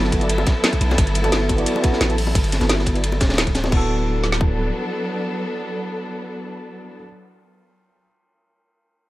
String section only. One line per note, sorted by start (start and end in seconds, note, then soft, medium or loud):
0.00 3.68 F#3 medium
0.00 3.68 B3 medium
0.00 3.68 E4 medium
0.00 3.68 A4 medium
3.72 7.03 F#3 medium
3.72 7.03 B3 medium
3.72 7.03 D4 medium
3.72 7.03 A4 medium